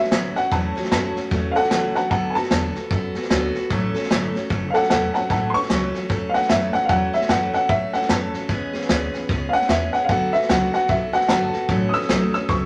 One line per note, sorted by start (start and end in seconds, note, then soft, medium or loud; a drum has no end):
0.00 0.11 F#3 soft
0.00 0.11 A3 soft
0.00 0.11 C#4 medium
0.00 0.12 F#4 medium
0.00 0.35 E5 medium
0.04 snare soft
0.11 0.35 D2 medium
0.11 0.36 A2 medium
0.11 0.36 E3 medium
0.11 0.36 F#3 medium
0.11 0.36 A3 medium
0.11 0.35 C#4 medium
0.11 0.34 F#4 medium
0.11 snare loud
0.11 hi-hat pedal loud
0.35 0.51 F#3 soft
0.35 0.51 A3 soft
0.35 0.51 C#4 soft
0.35 0.51 F#4 medium
0.35 0.51 F#5 loud
0.35 snare soft
0.51 0.75 E2 medium
0.51 0.76 A2 medium
0.51 0.76 E3 medium
0.51 0.76 F#3 medium
0.51 0.76 A3 medium
0.51 0.75 C#4 medium
0.51 0.74 F#4 medium
0.51 0.90 A5 medium
0.51 kick loud
0.51 snare soft
0.76 0.91 F#3 medium
0.76 0.91 A3 medium
0.76 0.92 C#4 medium
0.76 0.91 F#4 medium
0.76 snare soft
0.84 snare soft
0.91 1.15 F#2 loud
0.91 1.16 A2 medium
0.91 1.16 E3 medium
0.91 1.16 F#3 medium
0.91 1.17 A3 medium
0.91 1.16 C#4 medium
0.91 1.15 F#4 medium
0.91 1.15 A5 loud
0.91 snare loud
0.91 hi-hat pedal loud
1.16 1.30 F#3 soft
1.16 1.31 A3 soft
1.16 1.31 C#4 soft
1.16 1.32 F#4 soft
1.16 muted upright bass stroke medium
1.16 snare soft
1.31 1.55 E2 loud
1.31 1.55 F#3 medium
1.31 1.56 A3 medium
1.31 1.55 C#4 medium
1.31 1.54 F#4 medium
1.31 kick loud
1.31 snare soft
1.52 1.71 F#4 medium
1.52 1.54 F5 medium
1.56 1.70 F#3 soft
1.56 1.71 A3 soft
1.56 1.71 C#4 soft
1.56 1.69 A4 medium
1.56 1.69 F#5 loud
1.56 snare soft
1.63 snare soft
1.71 1.94 C#2 medium
1.71 1.95 A2 medium
1.71 1.96 E3 medium
1.71 1.96 F#3 medium
1.71 1.96 A3 medium
1.71 1.95 C#4 medium
1.71 1.94 F#4 medium
1.71 1.94 A4 medium
1.71 1.94 F#5 medium
1.71 snare loud
1.71 hi-hat pedal medium
1.95 2.10 F#3 soft
1.95 2.12 A3 soft
1.95 2.12 C#4 soft
1.95 2.11 F#4 soft
1.95 2.09 F#5 medium
1.95 2.10 A5 medium
1.95 muted upright bass stroke soft
1.95 snare soft
2.10 2.34 D2 loud
2.10 2.36 D3 medium
2.10 2.36 F#3 medium
2.10 2.36 B3 medium
2.10 2.36 F#4 medium
2.10 2.35 A4 medium
2.10 2.33 F#5 medium
2.10 2.34 A5 medium
2.10 kick loud
2.10 snare soft
2.30 2.33 G#5 medium
2.35 2.51 B3 soft
2.35 2.51 F#4 medium
2.35 2.51 A4 medium
2.35 2.74 A5 loud
2.35 snare soft
2.43 snare soft
2.51 2.75 E2 loud
2.51 2.75 D3 medium
2.51 2.76 F#3 medium
2.51 2.76 B3 medium
2.51 2.76 F#4 medium
2.51 2.74 A4 medium
2.51 snare loud
2.51 hi-hat pedal medium
2.75 2.90 B3 soft
2.75 2.91 F#4 soft
2.75 2.91 A4 soft
2.75 snare soft
2.90 3.14 F#2 medium
2.90 3.15 F#3 medium
2.90 3.16 B3 medium
2.90 3.15 F#4 medium
2.90 3.14 A4 medium
2.90 kick loud
2.90 snare soft
3.15 3.30 B3 medium
3.15 3.30 F#4 medium
3.15 3.31 A4 medium
3.15 snare soft
3.23 snare soft
3.30 3.54 D2 medium
3.30 3.55 D3 medium
3.30 3.55 F#3 medium
3.30 3.56 B3 medium
3.30 3.55 F#4 loud
3.30 3.54 A4 medium
3.30 snare loud
3.30 hi-hat pedal medium
3.55 3.71 B3 soft
3.55 3.71 F#4 medium
3.55 3.71 A4 medium
3.55 snare soft
3.70 3.94 A1 medium
3.70 3.95 A2 medium
3.70 3.95 E3 medium
3.70 3.95 F#3 medium
3.70 3.95 A3 medium
3.70 3.94 C#4 medium
3.70 3.93 A4 loud
3.70 kick loud
3.70 snare soft
3.94 4.10 F#3 medium
3.94 4.10 A3 medium
3.94 4.11 C#4 medium
3.94 4.10 A4 medium
3.94 muted upright bass stroke medium
3.94 snare soft
4.03 snare soft
4.10 4.34 G1 loud
4.10 4.35 A2 medium
4.10 4.35 E3 medium
4.10 4.35 F#3 medium
4.10 4.35 A3 medium
4.10 4.34 C#4 medium
4.10 4.33 A4 loud
4.10 snare loud
4.10 hi-hat pedal medium
4.34 4.49 F#3 soft
4.34 4.50 A3 medium
4.34 4.51 C#4 medium
4.34 4.50 A4 medium
4.34 muted upright bass stroke medium
4.34 snare soft
4.50 4.74 F#1 medium
4.50 4.75 F#3 medium
4.50 4.75 A3 medium
4.50 4.74 C#4 medium
4.50 4.73 A4 medium
4.50 kick loud
4.50 snare soft
4.70 4.88 A4 loud
4.70 4.90 A4 medium
4.70 4.73 F5 medium
4.75 4.90 F#3 soft
4.75 4.90 A3 medium
4.75 4.91 C#4 medium
4.75 4.88 F#5 loud
4.75 snare soft
4.83 snare soft
4.90 5.14 E1 medium
4.90 5.15 A2 medium
4.90 5.15 E3 medium
4.90 5.15 F#3 medium
4.90 5.15 A3 medium
4.90 5.15 C#4 medium
4.90 5.13 A4 medium
4.90 5.13 A4 loud
4.90 5.13 F#5 loud
4.90 snare loud
4.90 hi-hat pedal medium
5.14 5.29 F#3 soft
5.14 5.30 A3 medium
5.14 5.30 C#4 soft
5.14 5.30 A4 medium
5.14 5.29 F#5 medium
5.14 5.29 A5 loud
5.14 snare soft
5.30 5.54 A1 medium
5.30 5.55 A2 medium
5.30 5.55 E3 medium
5.30 5.55 F#3 medium
5.30 5.55 A3 medium
5.30 5.54 C#4 medium
5.30 5.53 A4 medium
5.30 5.53 F#5 medium
5.30 5.54 A5 medium
5.30 kick loud
5.30 snare soft
5.50 5.53 C6 medium
5.54 5.69 F#3 soft
5.54 5.70 A3 medium
5.54 5.70 C#4 medium
5.54 5.70 A4 medium
5.54 5.93 C#6 loud
5.54 muted upright bass stroke medium
5.54 snare soft
5.62 snare soft
5.70 5.94 C#2 loud
5.70 5.94 A2 medium
5.70 5.95 E3 medium
5.70 5.95 F#3 medium
5.70 5.95 A3 medium
5.70 5.94 C#4 medium
5.70 5.93 A4 medium
5.70 snare loud
5.70 hi-hat pedal medium
5.94 6.08 F#3 soft
5.94 6.09 A3 soft
5.94 6.10 C#4 soft
5.94 6.10 A4 medium
5.94 muted upright bass stroke medium
5.94 snare soft
6.09 6.33 E2 medium
6.09 6.34 F#3 medium
6.09 6.34 A3 medium
6.09 6.33 C#4 medium
6.09 6.32 A4 medium
6.09 kick loud
6.09 snare soft
6.29 6.32 F5 medium
6.34 6.49 F#3 soft
6.34 6.49 A3 medium
6.34 6.49 C#4 medium
6.34 6.50 A4 medium
6.34 6.49 F#5 loud
6.34 muted upright bass stroke soft
6.34 snare soft
6.42 snare soft
6.49 6.74 F#2 medium
6.49 6.74 A2 medium
6.49 6.74 E3 medium
6.49 6.75 F#3 medium
6.49 6.74 A3 medium
6.49 6.73 C#4 medium
6.49 6.72 A4 medium
6.49 6.73 E5 loud
6.49 snare loud
6.49 hi-hat pedal loud
6.73 6.88 F#3 soft
6.73 6.89 A3 soft
6.73 6.89 C#4 medium
6.73 6.89 A4 soft
6.73 6.88 F#5 loud
6.73 muted upright bass stroke medium
6.73 snare soft
6.85 6.88 F5 medium
6.85 snare soft
6.89 7.13 E2 loud
6.89 7.14 A2 medium
6.89 7.14 E3 medium
6.89 7.14 F#3 medium
6.89 7.14 A3 medium
6.89 7.13 C#4 medium
6.89 7.12 A4 medium
6.89 7.13 F#5 loud
6.89 kick loud
7.13 7.29 F#3 soft
7.13 7.29 A3 medium
7.13 7.29 C#4 soft
7.13 7.29 A4 medium
7.13 7.29 E5 loud
7.13 snare soft
7.21 snare soft
7.29 7.53 F#2 loud
7.29 7.54 A2 medium
7.29 7.54 E3 medium
7.29 7.54 F#3 medium
7.29 7.54 A3 loud
7.29 7.53 C#4 medium
7.29 7.52 A4 medium
7.29 7.53 F#5 loud
7.29 snare loud
7.29 hi-hat pedal medium
7.53 7.68 F#3 soft
7.53 7.69 A3 soft
7.53 7.70 C#4 medium
7.53 7.69 A4 medium
7.53 7.69 F#5 loud
7.53 muted upright bass stroke medium
7.53 snare soft
7.69 7.92 A2 medium
7.69 7.94 F#3 medium
7.69 7.94 A3 medium
7.69 7.93 C#4 medium
7.69 7.92 A4 medium
7.69 7.93 E5 loud
7.69 kick loud
7.69 snare soft
7.93 8.09 F#3 soft
7.93 8.09 A3 soft
7.93 8.09 C#4 medium
7.93 8.10 A4 medium
7.93 8.09 F#5 medium
7.93 muted upright bass stroke soft
7.93 snare soft
8.01 snare soft
8.09 8.33 F#2 medium
8.09 8.34 A2 medium
8.09 8.34 E3 medium
8.09 8.34 F#3 medium
8.09 8.34 A3 medium
8.09 8.34 C#4 medium
8.09 8.33 A4 medium
8.09 8.49 A5 medium
8.09 snare loud
8.09 hi-hat pedal medium
8.34 8.49 F#3 soft
8.34 8.50 A3 soft
8.34 8.49 C#4 medium
8.34 8.50 A4 medium
8.34 muted upright bass stroke medium
8.34 snare soft
8.49 8.72 E2 medium
8.49 8.74 E3 medium
8.49 8.74 G#3 medium
8.49 8.75 B3 medium
8.49 8.74 C#4 medium
8.49 8.72 G#4 medium
8.49 kick loud
8.49 snare soft
8.73 8.89 B3 medium
8.73 8.89 C#4 medium
8.73 8.89 G#4 medium
8.73 muted upright bass stroke soft
8.73 snare soft
8.81 snare soft
8.89 9.13 D2 loud
8.89 9.14 E3 medium
8.89 9.14 G#3 medium
8.89 9.14 B3 loud
8.89 9.14 C#4 medium
8.89 9.12 G#4 loud
8.89 snare loud
8.89 hi-hat pedal medium
9.14 9.29 B3 soft
9.14 9.30 C#4 medium
9.14 9.29 G#4 medium
9.14 snare soft
9.29 9.53 C#2 medium
9.29 9.54 G#3 medium
9.29 9.54 B3 medium
9.29 9.54 C#4 medium
9.29 9.52 G#4 medium
9.29 kick loud
9.29 snare soft
9.49 9.52 F5 medium
9.53 9.68 B3 soft
9.53 9.69 C#4 medium
9.53 9.69 G#4 medium
9.53 9.69 F#5 loud
9.53 snare soft
9.61 snare soft
9.69 9.93 E2 medium
9.69 9.94 E3 medium
9.69 9.94 G#3 medium
9.69 9.94 B3 medium
9.69 9.94 C#4 medium
9.69 9.93 G#4 medium
9.69 9.93 E5 medium
9.69 snare loud
9.69 hi-hat pedal medium
9.93 10.09 B3 soft
9.93 10.10 C#4 soft
9.93 10.09 G#4 soft
9.93 10.08 F#5 medium
9.93 muted upright bass stroke medium
9.93 snare soft
10.04 10.08 F5 medium
10.09 10.32 D2 medium
10.09 10.34 D3 medium
10.09 10.34 F#3 medium
10.09 10.34 B3 medium
10.09 10.34 F#4 medium
10.09 10.33 A4 medium
10.09 10.33 F#5 loud
10.09 kick loud
10.09 snare soft
10.33 10.48 B3 soft
10.33 10.49 F#4 medium
10.33 10.49 A4 medium
10.33 10.49 E5 loud
10.33 muted upright bass stroke soft
10.33 snare soft
10.42 snare soft
10.49 10.73 C#2 medium
10.49 10.73 D3 medium
10.49 10.74 F#3 medium
10.49 10.74 B3 medium
10.49 10.73 F#4 medium
10.49 10.72 A4 medium
10.49 10.72 F#5 loud
10.49 snare loud
10.49 hi-hat pedal medium
10.73 10.88 B3 soft
10.73 10.89 F#4 medium
10.73 10.89 A4 medium
10.73 10.89 F#5 loud
10.73 muted upright bass stroke medium
10.73 snare soft
10.88 11.13 B1 medium
10.88 11.13 F#3 medium
10.88 11.14 B3 medium
10.88 11.13 F#4 medium
10.88 11.12 A4 medium
10.88 11.13 E5 medium
10.88 kick loud
10.88 snare soft
11.13 11.28 B3 medium
11.13 11.28 F#4 soft
11.13 11.29 A4 medium
11.13 11.27 F#5 loud
11.13 muted upright bass stroke medium
11.13 snare soft
11.21 snare soft
11.28 11.53 G1 medium
11.28 11.53 D3 medium
11.28 11.54 F#3 medium
11.28 11.54 B3 medium
11.28 11.53 F#4 medium
11.28 11.52 A4 medium
11.28 11.66 F#5 medium
11.28 11.68 A5 loud
11.28 snare loud
11.28 hi-hat pedal medium
11.53 11.70 B3 soft
11.53 11.70 F#4 soft
11.53 11.69 A4 medium
11.53 muted upright bass stroke medium
11.53 snare soft
11.69 11.93 A1 medium
11.69 11.93 A2 medium
11.69 11.94 E3 medium
11.69 11.94 F#3 medium
11.69 11.94 A3 medium
11.69 11.93 C#4 medium
11.69 11.92 A4 medium
11.69 kick loud
11.69 snare soft
11.89 11.92 D#6 medium
11.93 12.09 A3 medium
11.93 12.09 C#4 medium
11.93 12.09 A4 medium
11.93 12.09 E6 loud
11.93 muted upright bass stroke medium
11.93 snare soft
12.01 snare soft
12.09 12.33 B1 loud
12.09 12.33 A2 medium
12.09 12.33 E3 medium
12.09 12.34 F#3 medium
12.09 12.34 A3 medium
12.09 12.33 C#4 medium
12.09 12.32 A4 medium
12.09 snare loud
12.09 hi-hat pedal medium
12.33 12.47 F#3 soft
12.33 12.48 A3 soft
12.33 12.49 C#4 medium
12.33 12.49 A4 medium
12.33 12.49 E6 medium
12.33 muted upright bass stroke medium
12.33 snare soft
12.48 12.66 C#2 medium
12.48 12.66 F#3 medium
12.48 12.66 A3 medium
12.48 12.66 C#4 medium
12.48 12.66 A4 medium
12.48 12.66 C#6 loud
12.48 kick loud
12.48 snare soft